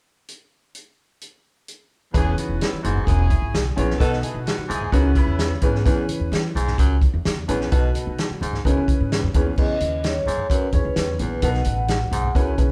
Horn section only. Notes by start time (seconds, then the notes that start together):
2.14 C#4 E4 G#4
2.38 B3 D#4 F#4
2.61 B3 C#4 E4
2.82 B3 D#4 F#4
3.06 C#4 E4 G#4
3.98 D#4 F#4 A4
4.22 C#4 E4 G#4
4.45 B3 D#4 F#4
4.69 C#4 E4 G#4
4.92 B3 D#4 F#4
5.15 B3 C#4 E4